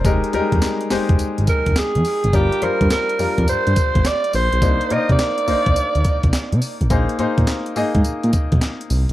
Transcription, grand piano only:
0, 0, Header, 1, 2, 480
1, 0, Start_track
1, 0, Tempo, 571429
1, 39, Time_signature, 4, 2, 24, 8
1, 7666, End_track
2, 0, Start_track
2, 0, Title_t, "Grand piano"
2, 0, Program_c, 0, 0
2, 0, Control_c, 0, 64, 127
2, 0, Note_on_c, 0, 72, 65
2, 40, Note_on_c, 0, 56, 87
2, 43, Note_on_c, 0, 63, 81
2, 47, Note_on_c, 0, 67, 85
2, 50, Note_on_c, 0, 70, 101
2, 51, Control_c, 0, 64, 0
2, 190, Note_off_c, 0, 72, 0
2, 222, Control_c, 0, 64, 127
2, 266, Note_off_c, 0, 56, 0
2, 268, Note_off_c, 0, 63, 0
2, 270, Note_off_c, 0, 67, 0
2, 271, Note_off_c, 0, 70, 0
2, 278, Note_on_c, 0, 55, 77
2, 281, Note_on_c, 0, 63, 86
2, 285, Note_on_c, 0, 67, 94
2, 289, Note_on_c, 0, 70, 114
2, 333, Note_on_c, 0, 56, 95
2, 352, Note_off_c, 0, 55, 0
2, 734, Note_off_c, 0, 63, 0
2, 736, Note_off_c, 0, 67, 0
2, 738, Note_off_c, 0, 70, 0
2, 746, Note_off_c, 0, 56, 0
2, 759, Note_on_c, 0, 56, 89
2, 763, Note_on_c, 0, 63, 81
2, 766, Note_on_c, 0, 67, 91
2, 770, Note_on_c, 0, 72, 94
2, 1667, Note_off_c, 0, 56, 0
2, 1669, Note_off_c, 0, 63, 0
2, 1671, Note_off_c, 0, 67, 0
2, 1673, Note_off_c, 0, 72, 0
2, 1959, Note_on_c, 0, 55, 76
2, 1962, Note_on_c, 0, 62, 67
2, 1966, Note_on_c, 0, 65, 69
2, 1968, Control_c, 0, 64, 0
2, 1969, Note_on_c, 0, 70, 83
2, 2097, Control_c, 0, 64, 127
2, 2185, Note_off_c, 0, 55, 0
2, 2188, Note_off_c, 0, 62, 0
2, 2189, Note_off_c, 0, 65, 0
2, 2191, Note_off_c, 0, 70, 0
2, 2198, Note_on_c, 0, 55, 83
2, 2201, Note_on_c, 0, 62, 72
2, 2204, Note_on_c, 0, 65, 68
2, 2208, Note_on_c, 0, 72, 90
2, 2653, Note_off_c, 0, 55, 0
2, 2654, Note_off_c, 0, 62, 0
2, 2656, Note_off_c, 0, 65, 0
2, 2658, Note_off_c, 0, 72, 0
2, 2677, Note_on_c, 0, 55, 76
2, 2681, Note_on_c, 0, 62, 72
2, 2684, Note_on_c, 0, 65, 71
2, 2688, Note_on_c, 0, 70, 83
2, 3587, Note_off_c, 0, 55, 0
2, 3589, Note_off_c, 0, 62, 0
2, 3590, Note_off_c, 0, 65, 0
2, 3592, Note_off_c, 0, 70, 0
2, 3879, Note_on_c, 0, 58, 75
2, 3883, Note_on_c, 0, 62, 69
2, 3886, Note_on_c, 0, 63, 71
2, 3889, Note_on_c, 0, 72, 86
2, 3890, Control_c, 0, 64, 0
2, 4043, Control_c, 0, 64, 127
2, 4106, Note_off_c, 0, 58, 0
2, 4108, Note_off_c, 0, 62, 0
2, 4110, Note_off_c, 0, 63, 0
2, 4111, Note_off_c, 0, 72, 0
2, 4119, Note_on_c, 0, 58, 83
2, 4122, Note_on_c, 0, 62, 73
2, 4125, Note_on_c, 0, 63, 79
2, 4129, Note_on_c, 0, 70, 71
2, 4183, Note_on_c, 0, 72, 93
2, 4197, Note_off_c, 0, 70, 0
2, 4573, Note_off_c, 0, 58, 0
2, 4575, Note_off_c, 0, 62, 0
2, 4576, Note_off_c, 0, 63, 0
2, 4596, Note_off_c, 0, 72, 0
2, 4598, Note_on_c, 0, 58, 81
2, 4602, Note_on_c, 0, 62, 71
2, 4606, Note_on_c, 0, 63, 71
2, 4609, Note_on_c, 0, 72, 82
2, 5507, Note_off_c, 0, 58, 0
2, 5509, Note_off_c, 0, 62, 0
2, 5511, Note_off_c, 0, 63, 0
2, 5512, Note_off_c, 0, 72, 0
2, 5798, Note_on_c, 0, 58, 94
2, 5802, Note_on_c, 0, 63, 85
2, 5804, Note_on_c, 0, 68, 81
2, 5808, Note_on_c, 0, 72, 96
2, 5809, Control_c, 0, 64, 0
2, 5951, Control_c, 0, 64, 127
2, 6025, Note_off_c, 0, 58, 0
2, 6027, Note_off_c, 0, 63, 0
2, 6029, Note_off_c, 0, 68, 0
2, 6031, Note_off_c, 0, 72, 0
2, 6037, Note_on_c, 0, 58, 91
2, 6041, Note_on_c, 0, 63, 92
2, 6044, Note_on_c, 0, 68, 82
2, 6047, Note_on_c, 0, 72, 103
2, 6492, Note_off_c, 0, 58, 0
2, 6494, Note_off_c, 0, 63, 0
2, 6496, Note_off_c, 0, 68, 0
2, 6497, Note_off_c, 0, 72, 0
2, 6517, Note_on_c, 0, 58, 92
2, 6520, Note_on_c, 0, 63, 84
2, 6524, Note_on_c, 0, 68, 91
2, 6528, Note_on_c, 0, 75, 105
2, 7427, Note_off_c, 0, 58, 0
2, 7428, Note_off_c, 0, 63, 0
2, 7430, Note_off_c, 0, 68, 0
2, 7432, Note_off_c, 0, 75, 0
2, 7666, End_track
0, 0, End_of_file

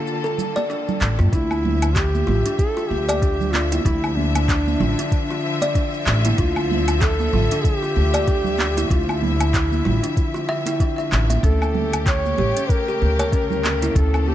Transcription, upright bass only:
0, 0, Header, 1, 2, 480
1, 0, Start_track
1, 0, Key_signature, -1, "minor"
1, 0, Tempo, 631579
1, 1010, Time_signature, 4, 2, 24, 8
1, 10904, End_track
2, 0, Start_track
2, 0, Title_t, "Upright bass"
2, 0, Program_c, 0, 32
2, 769, Note_on_c, 0, 33, 78
2, 906, Note_on_c, 0, 43, 87
2, 917, Note_off_c, 0, 33, 0
2, 979, Note_off_c, 0, 43, 0
2, 1008, Note_on_c, 0, 38, 97
2, 1681, Note_off_c, 0, 38, 0
2, 1728, Note_on_c, 0, 33, 78
2, 1826, Note_off_c, 0, 33, 0
2, 2209, Note_on_c, 0, 38, 78
2, 2881, Note_off_c, 0, 38, 0
2, 2928, Note_on_c, 0, 38, 98
2, 3601, Note_off_c, 0, 38, 0
2, 3648, Note_on_c, 0, 33, 80
2, 3746, Note_off_c, 0, 33, 0
2, 4609, Note_on_c, 0, 33, 100
2, 4789, Note_off_c, 0, 33, 0
2, 4852, Note_on_c, 0, 38, 100
2, 5523, Note_off_c, 0, 38, 0
2, 5571, Note_on_c, 0, 33, 81
2, 5668, Note_off_c, 0, 33, 0
2, 6051, Note_on_c, 0, 38, 81
2, 6723, Note_off_c, 0, 38, 0
2, 6768, Note_on_c, 0, 38, 101
2, 7441, Note_off_c, 0, 38, 0
2, 7492, Note_on_c, 0, 33, 80
2, 7588, Note_off_c, 0, 33, 0
2, 8453, Note_on_c, 0, 33, 96
2, 8631, Note_off_c, 0, 33, 0
2, 8688, Note_on_c, 0, 38, 102
2, 9361, Note_off_c, 0, 38, 0
2, 9410, Note_on_c, 0, 33, 83
2, 9507, Note_off_c, 0, 33, 0
2, 9892, Note_on_c, 0, 38, 80
2, 10563, Note_off_c, 0, 38, 0
2, 10606, Note_on_c, 0, 38, 98
2, 10904, Note_off_c, 0, 38, 0
2, 10904, End_track
0, 0, End_of_file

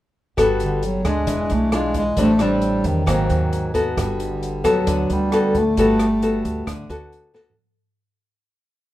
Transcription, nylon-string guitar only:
0, 0, Header, 1, 2, 480
1, 0, Start_track
1, 0, Key_signature, 1, "major"
1, 0, Tempo, 449438
1, 403, Time_signature, 4, 2, 24, 8
1, 9539, End_track
2, 0, Start_track
2, 0, Title_t, "Nylon-string guitar"
2, 0, Program_c, 0, 24
2, 397, Note_on_c, 0, 55, 50
2, 400, Note_on_c, 0, 59, 55
2, 407, Note_on_c, 0, 66, 49
2, 412, Note_on_c, 0, 69, 57
2, 877, Note_off_c, 0, 59, 0
2, 879, Note_off_c, 0, 66, 0
2, 884, Note_off_c, 0, 69, 0
2, 1114, Note_off_c, 0, 55, 0
2, 1119, Note_on_c, 0, 56, 60
2, 1128, Note_on_c, 0, 62, 58
2, 1355, Note_on_c, 0, 52, 54
2, 1802, Note_off_c, 0, 56, 0
2, 1806, Note_off_c, 0, 62, 0
2, 1839, Note_on_c, 0, 56, 52
2, 1844, Note_on_c, 0, 62, 51
2, 1845, Note_on_c, 0, 65, 53
2, 2163, Note_off_c, 0, 56, 0
2, 2165, Note_off_c, 0, 65, 0
2, 2166, Note_off_c, 0, 62, 0
2, 2295, Note_off_c, 0, 52, 0
2, 2322, Note_on_c, 0, 45, 52
2, 2324, Note_on_c, 0, 55, 55
2, 2331, Note_on_c, 0, 60, 54
2, 2332, Note_on_c, 0, 62, 57
2, 2463, Note_off_c, 0, 55, 0
2, 2465, Note_off_c, 0, 60, 0
2, 2468, Note_off_c, 0, 62, 0
2, 2561, Note_on_c, 0, 55, 62
2, 2565, Note_on_c, 0, 60, 56
2, 2572, Note_on_c, 0, 62, 65
2, 3244, Note_off_c, 0, 55, 0
2, 3245, Note_off_c, 0, 60, 0
2, 3249, Note_off_c, 0, 62, 0
2, 3260, Note_off_c, 0, 45, 0
2, 3272, Note_on_c, 0, 54, 48
2, 3275, Note_on_c, 0, 44, 55
2, 3280, Note_on_c, 0, 58, 49
2, 3283, Note_on_c, 0, 60, 57
2, 3959, Note_off_c, 0, 54, 0
2, 3962, Note_off_c, 0, 58, 0
2, 3965, Note_off_c, 0, 60, 0
2, 3994, Note_on_c, 0, 59, 57
2, 4001, Note_on_c, 0, 66, 59
2, 4003, Note_on_c, 0, 69, 56
2, 4216, Note_off_c, 0, 44, 0
2, 4247, Note_on_c, 0, 55, 55
2, 4921, Note_off_c, 0, 59, 0
2, 4924, Note_off_c, 0, 66, 0
2, 4925, Note_off_c, 0, 69, 0
2, 4955, Note_on_c, 0, 59, 61
2, 4957, Note_on_c, 0, 66, 59
2, 4962, Note_on_c, 0, 69, 70
2, 5182, Note_off_c, 0, 55, 0
2, 5203, Note_on_c, 0, 50, 56
2, 5642, Note_off_c, 0, 59, 0
2, 5642, Note_off_c, 0, 66, 0
2, 5645, Note_off_c, 0, 69, 0
2, 5687, Note_on_c, 0, 59, 45
2, 5692, Note_on_c, 0, 66, 50
2, 5698, Note_on_c, 0, 69, 53
2, 5995, Note_off_c, 0, 59, 0
2, 5998, Note_off_c, 0, 66, 0
2, 6001, Note_off_c, 0, 69, 0
2, 6140, Note_off_c, 0, 50, 0
2, 6179, Note_on_c, 0, 55, 55
2, 6179, Note_on_c, 0, 59, 55
2, 6185, Note_on_c, 0, 66, 51
2, 6185, Note_on_c, 0, 69, 64
2, 6480, Note_off_c, 0, 59, 0
2, 6482, Note_off_c, 0, 66, 0
2, 6484, Note_off_c, 0, 69, 0
2, 6647, Note_on_c, 0, 59, 47
2, 6650, Note_on_c, 0, 66, 53
2, 6657, Note_on_c, 0, 69, 58
2, 7109, Note_off_c, 0, 55, 0
2, 7120, Note_on_c, 0, 50, 48
2, 7123, Note_off_c, 0, 59, 0
2, 7125, Note_off_c, 0, 66, 0
2, 7126, Note_off_c, 0, 69, 0
2, 7364, Note_on_c, 0, 59, 53
2, 7370, Note_on_c, 0, 66, 58
2, 7377, Note_on_c, 0, 69, 65
2, 7806, Note_off_c, 0, 59, 0
2, 7809, Note_off_c, 0, 66, 0
2, 7812, Note_off_c, 0, 69, 0
2, 7836, Note_on_c, 0, 59, 60
2, 7844, Note_on_c, 0, 66, 54
2, 7844, Note_on_c, 0, 69, 66
2, 8042, Note_off_c, 0, 59, 0
2, 8044, Note_off_c, 0, 66, 0
2, 8046, Note_off_c, 0, 69, 0
2, 8058, Note_off_c, 0, 50, 0
2, 9539, End_track
0, 0, End_of_file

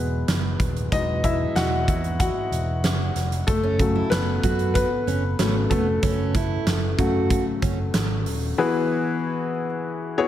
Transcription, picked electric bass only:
0, 0, Header, 1, 2, 480
1, 0, Start_track
1, 0, Key_signature, 4, "major"
1, 0, Tempo, 638230
1, 694, Time_signature, 4, 2, 24, 8
1, 7730, End_track
2, 0, Start_track
2, 0, Title_t, "Picked electric bass"
2, 0, Program_c, 0, 34
2, 0, Note_on_c, 0, 28, 77
2, 168, Note_off_c, 0, 28, 0
2, 212, Note_on_c, 0, 30, 79
2, 410, Note_off_c, 0, 30, 0
2, 450, Note_on_c, 0, 27, 72
2, 648, Note_off_c, 0, 27, 0
2, 693, Note_on_c, 0, 28, 97
2, 1087, Note_off_c, 0, 28, 0
2, 1172, Note_on_c, 0, 28, 90
2, 1414, Note_on_c, 0, 40, 98
2, 1426, Note_off_c, 0, 28, 0
2, 1709, Note_off_c, 0, 40, 0
2, 1892, Note_on_c, 0, 28, 77
2, 2132, Note_off_c, 0, 28, 0
2, 2132, Note_on_c, 0, 30, 81
2, 2329, Note_off_c, 0, 30, 0
2, 2375, Note_on_c, 0, 29, 73
2, 2571, Note_off_c, 0, 29, 0
2, 2615, Note_on_c, 0, 30, 101
2, 3008, Note_off_c, 0, 30, 0
2, 3097, Note_on_c, 0, 30, 89
2, 3293, Note_off_c, 0, 30, 0
2, 3335, Note_on_c, 0, 42, 91
2, 3630, Note_off_c, 0, 42, 0
2, 3816, Note_on_c, 0, 30, 91
2, 4012, Note_off_c, 0, 30, 0
2, 4056, Note_on_c, 0, 32, 90
2, 4252, Note_off_c, 0, 32, 0
2, 4291, Note_on_c, 0, 29, 70
2, 4489, Note_off_c, 0, 29, 0
2, 4534, Note_on_c, 0, 30, 90
2, 4927, Note_off_c, 0, 30, 0
2, 5013, Note_on_c, 0, 30, 89
2, 5210, Note_off_c, 0, 30, 0
2, 5255, Note_on_c, 0, 42, 94
2, 5550, Note_off_c, 0, 42, 0
2, 5734, Note_on_c, 0, 30, 92
2, 5930, Note_off_c, 0, 30, 0
2, 5974, Note_on_c, 0, 32, 84
2, 6214, Note_off_c, 0, 32, 0
2, 6214, Note_on_c, 0, 27, 85
2, 6411, Note_off_c, 0, 27, 0
2, 7730, End_track
0, 0, End_of_file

